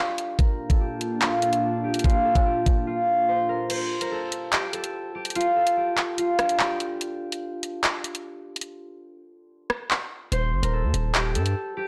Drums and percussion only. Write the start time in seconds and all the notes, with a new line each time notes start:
0.18 closed hi-hat
0.39 kick, closed hi-hat
0.70 kick, closed hi-hat
1.01 closed hi-hat
1.22 clap, closed hi-hat
1.42 closed hi-hat
1.53 closed hi-hat
1.94 closed hi-hat
1.99 closed hi-hat
2.04 kick, closed hi-hat
2.10 closed hi-hat
2.35 kick, closed hi-hat
2.66 kick, closed hi-hat
3.70 closed hi-hat, crash
4.01 closed hi-hat
4.32 closed hi-hat
4.53 clap, closed hi-hat
4.73 closed hi-hat
4.84 closed hi-hat
5.25 closed hi-hat
5.30 closed hi-hat
5.35 closed hi-hat
5.41 closed hi-hat
5.67 closed hi-hat
5.97 clap, closed hi-hat
6.18 closed hi-hat
6.39 cross-stick, closed hi-hat
6.49 closed hi-hat
6.60 clap
6.80 closed hi-hat
7.01 closed hi-hat
7.32 closed hi-hat
7.63 closed hi-hat
7.84 clap, closed hi-hat
8.04 closed hi-hat
8.15 closed hi-hat
8.56 closed hi-hat
8.61 closed hi-hat
9.70 cross-stick
9.91 clap
10.32 closed hi-hat
10.63 closed hi-hat
10.94 closed hi-hat
11.15 clap, closed hi-hat
11.35 closed hi-hat
11.46 closed hi-hat